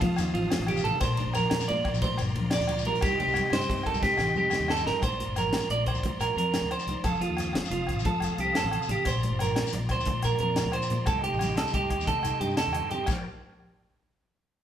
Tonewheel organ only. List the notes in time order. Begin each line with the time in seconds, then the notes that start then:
Already playing: F5 A5 D#6
1.02 D5 A#5 C6
3.03 D#5 G5 C6
5.04 D5 A#5 C6
7.04 F5 A5 D#6
9.09 D5 A#5 C6
11.09 D#5 G5
13.10 A#4 C5 D5